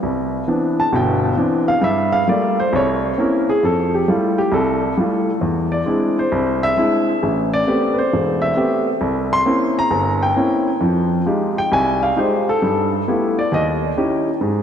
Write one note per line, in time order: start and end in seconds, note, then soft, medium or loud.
0.03 0.42 C2 medium
0.48 0.80 E3 medium
0.48 0.80 B3 soft
0.48 0.80 C4 soft
0.48 0.80 D4 medium
0.80 0.93 A5 medium
0.93 1.32 G1 medium
0.93 1.32 B2 medium
0.93 1.66 G5 medium
1.37 1.69 E3 medium
1.37 1.69 B3 soft
1.37 1.70 C4 soft
1.37 1.70 D4 medium
1.68 1.82 F5 medium
1.81 2.21 G2 medium
1.81 2.13 E5 medium
2.12 2.27 F5 medium
2.27 2.59 G3 medium
2.27 2.60 A3 soft
2.27 2.59 A#3 soft
2.27 2.60 F4 medium
2.27 2.58 D5 medium
2.60 2.73 C5 medium
2.73 3.12 C2 medium
2.73 3.16 C#5 medium
3.18 3.49 A#3 medium
3.18 3.50 C4 medium
3.18 3.50 C#4 soft
3.18 3.50 E4 medium
3.18 3.48 A#4 medium
3.50 3.63 G#4 medium
3.63 4.02 F2 medium
3.63 3.93 A4 medium
3.95 4.08 G4 medium
4.08 4.40 G3 medium
4.08 4.39 A3 soft
4.08 4.40 E4 medium
4.08 4.40 F4 medium
4.38 4.52 G4 medium
4.52 4.91 C2 medium
4.52 4.95 A4 medium
4.97 5.29 G3 medium
4.97 5.29 A3 medium
4.97 5.29 E4 soft
4.97 5.30 F4 medium
5.41 5.81 E2 medium
5.72 6.14 D5 medium
5.86 6.18 G#3 medium
5.86 6.19 C4 soft
5.86 6.19 D4 soft
5.86 6.19 E4 medium
6.19 6.60 C5 medium
6.32 6.71 C2 medium
6.63 7.05 E5 loud
6.77 7.09 G#3 medium
6.77 7.09 C4 soft
6.77 7.09 D4 soft
6.77 7.09 E4 medium
7.23 7.62 A1 medium
7.54 7.95 D5 medium
7.67 7.99 A3 medium
7.67 7.99 B3 soft
7.67 7.99 C4 medium
7.67 7.99 G4 medium
7.93 7.96 B4 medium
7.98 8.40 C5 medium
8.13 8.52 E1 medium
8.42 8.84 E5 medium
8.57 8.89 A3 medium
8.57 8.89 B3 medium
8.57 8.89 C4 medium
8.57 8.89 G4 medium
9.01 9.40 C2 medium
9.33 9.74 C6 loud
9.45 9.78 A#3 medium
9.45 9.78 C4 medium
9.45 9.78 C#4 medium
9.45 9.78 E4 medium
9.79 10.20 A#5 medium
9.90 10.30 G1 medium
10.22 10.64 G5 medium
10.36 10.68 A#3 medium
10.36 10.68 C4 medium
10.36 10.68 C#4 medium
10.36 10.68 E4 medium
10.81 11.20 F2 medium
10.81 11.20 F3 medium
11.26 11.58 G#3 medium
11.26 11.58 D#4 soft
11.26 11.58 F4 medium
11.26 11.58 G4 medium
11.58 11.72 G5 medium
11.72 12.10 C2 medium
11.72 12.02 G#5 medium
12.03 12.16 F5 medium
12.16 12.48 G#3 medium
12.16 12.48 D#4 medium
12.16 12.48 F4 medium
12.16 12.48 G4 medium
12.16 12.47 C5 medium
12.49 12.90 A4 medium
12.62 13.01 G2 medium
13.08 13.39 A3 medium
13.08 13.39 B3 medium
13.08 13.39 E4 medium
13.08 13.39 F4 soft
13.08 13.39 G4 medium
13.39 13.51 D5 medium
13.52 13.90 D#2 medium
13.52 13.71 D#5 medium
13.97 14.28 C#4 medium
13.97 14.28 D#4 soft
13.97 14.28 E4 medium
13.97 14.28 G4 medium
14.41 14.63 G#2 medium